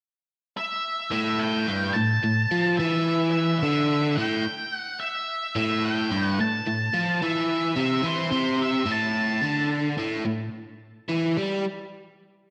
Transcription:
0.57 E5
1.12 A2 E5
1.39 G5
1.67 G2
1.93 A2 A5
2.23 A2
2.51 F3
2.77 E3 E5
3.31 E5
3.59 D3 E5
4.16 A2 G5
4.75 F#5
5.00 E5
5.56 A2 E5
5.85 G5
6.11 G2
6.26 F#5
6.39 A2 A5
6.67 A2
6.94 F3
7.22 E3 E5
7.77 C3 E5
8.04 E3 C5
8.32 C3
8.62 E5
8.87 A2
8.91 A5
9.43 D3
9.98 A2
10.26 A2
11.09 E3
11.37 G3

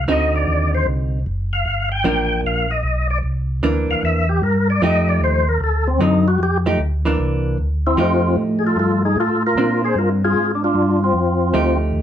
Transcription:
0.07 D2 D3 C4 D#4 F#4 D#5
0.36 D5
0.47 D#2
0.75 C5
0.87 C2
1.26 F#1
1.53 F5
1.66 G1
1.92 G5
2.04 A1 F3 A#3 D4
2.44 A#1 F5
2.71 D#5
2.83 B1
3.10 D5
3.23 C2
3.63 D2 E3 A#3 D4
3.88 D2 F5
4.03 E2 E5
4.29 G4
4.42 G2 A#4
4.70 D5
4.81 F2 F3 A3 D#4 G4 D#5
5.09 D5
5.19 D#2
5.24 C5
5.48 A#4
5.60 D2 A4
5.88 C4
5.99 F#2 D3 F#3 C4 D#4
6.03 D#4
6.28 F#4
6.38 F2
6.43 G4
6.66 F3 A3 D#4 G4
6.78 D2
7.05 E3 A#3 D4
7.19 C2
7.58 D2
7.87 C4 E4
7.97 F2 F3 A3 C4 D#4 F4 G4
8.36 A2
8.59 G#4
8.66 F4 A4
8.77 G2 F4 A4
9.05 D#4 G#4
9.16 A2
9.20 F4 A4
9.47 F4 A#4
9.56 A#2 C4 D4
9.84 G#4 C5
9.95 G2 F4 A#4
10.24 F4 G#4
10.35 G#2
10.55 D4
10.64 D4 F4
10.74 G2
11.04 C4 F4
11.14 F2
11.54 D2 F3 A3 D#4 G4
11.93 D#2

